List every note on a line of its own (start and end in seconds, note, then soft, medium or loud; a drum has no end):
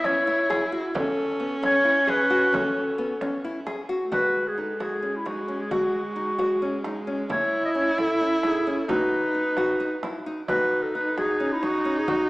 0.00 0.96 E4 loud
0.04 0.19 C#4 medium
0.04 0.72 C#5 loud
0.04 frame drum soft
0.27 0.41 E4 medium
0.27 frame drum soft
0.50 0.64 G#4 medium
0.50 frame drum soft
0.72 0.86 F#4 medium
0.94 1.23 C#4 medium
0.94 3.90 C#4 loud
0.94 1.60 A4 medium
0.94 frame drum medium
1.40 1.54 B3 medium
1.63 1.77 C#4 medium
1.63 2.11 C#5 loud
1.63 frame drum soft
1.85 1.99 E4 medium
1.85 frame drum soft
2.07 2.22 G#4 medium
2.07 2.57 B4 loud
2.07 frame drum soft
2.30 2.45 F#4 medium
2.53 2.81 C#4 medium
2.53 3.45 A4 medium
2.53 frame drum medium
2.76 frame drum soft
2.98 3.13 B3 medium
3.21 3.36 C#4 medium
3.21 frame drum soft
3.44 3.59 E4 medium
3.44 frame drum soft
3.66 3.81 G#4 medium
3.66 frame drum soft
3.89 4.04 F#4 medium
4.05 4.13 A3 medium
4.12 7.30 G#3 medium
4.12 4.41 F#4 medium
4.12 4.49 B4 loud
4.12 frame drum medium
4.48 4.61 G#4 medium
4.58 4.72 D#4 medium
4.58 4.83 A4 medium
4.58 frame drum soft
4.80 4.95 F#4 medium
4.80 5.18 G#4 medium
4.80 frame drum soft
5.03 5.17 C#4 medium
5.16 5.28 E4 medium
5.25 5.40 D#4 medium
5.25 5.63 F#4 medium
5.25 frame drum soft
5.48 5.63 C#4 medium
5.61 5.71 G#4 medium
5.71 6.00 F#4 medium
5.71 7.04 F#4 medium
5.71 frame drum soft
6.16 6.30 D#4 medium
6.16 frame drum soft
6.39 6.53 F#4 medium
6.39 frame drum soft
6.62 6.76 C#4 medium
6.84 6.99 D#4 medium
6.84 frame drum soft
7.07 7.22 C#4 medium
7.28 8.89 E4 loud
7.28 7.59 E4 medium
7.28 7.63 C#5 medium
7.28 frame drum medium
7.66 7.70 D#5 medium
7.75 7.90 C#4 medium
7.75 7.98 C#5 medium
7.75 frame drum soft
7.98 8.13 E4 medium
7.98 8.48 A4 medium
7.98 frame drum soft
8.21 8.35 C#4 medium
8.43 8.58 D#4 medium
8.43 8.81 G#4 medium
8.43 frame drum soft
8.67 8.81 C#4 medium
8.79 8.92 A4 medium
8.88 10.25 D#4 medium
8.88 9.18 F#4 medium
8.88 10.27 B4 medium
8.88 frame drum medium
9.11 frame drum soft
9.35 9.49 D#4 medium
9.57 9.72 F#4 medium
9.57 frame drum soft
9.79 9.95 D#4 medium
9.79 frame drum soft
10.03 10.18 E4 medium
10.03 frame drum soft
10.26 10.41 D#4 medium
10.48 12.29 D#4 loud
10.48 10.78 F#4 medium
10.48 10.84 B4 loud
10.48 frame drum medium
10.83 10.97 A4 medium
10.95 11.09 D#4 medium
10.95 11.18 B4 medium
10.95 frame drum soft
11.18 11.32 F#4 medium
11.18 11.54 G#4 medium
11.18 frame drum soft
11.40 11.54 C#4 medium
11.53 11.65 E4 medium
11.63 11.77 D#4 medium
11.63 12.00 F#4 medium
11.63 frame drum soft
11.85 12.00 C#4 medium
11.98 12.10 G#4 medium
12.08 12.29 F#4 medium
12.08 frame drum medium